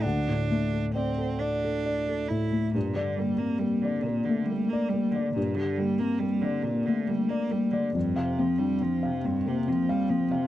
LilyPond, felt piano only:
\new Staff \with { instrumentName = "Felt piano" } { \time 3/4 \key g \minor \tempo 4 = 69 << { fis''2~ fis''8 r8 | r2. | r2. | r2. | } \\ { <d, a>16 a,16 a16 a'16 d''16 a'16 d''16 a'16 d''16 a'16 a,16 a16 | g,16 d''16 bes16 c'16 bes16 d''16 bes16 a16 bes16 d''16 bes16 d''16 | g,16 g'16 bes16 c'16 bes16 d''16 bes16 a16 bes16 d''16 bes16 d''16 | f,16 f''16 c'16 d'16 c'16 f''16 c'16 bes16 c'16 f''16 c'16 f''16 | } >> }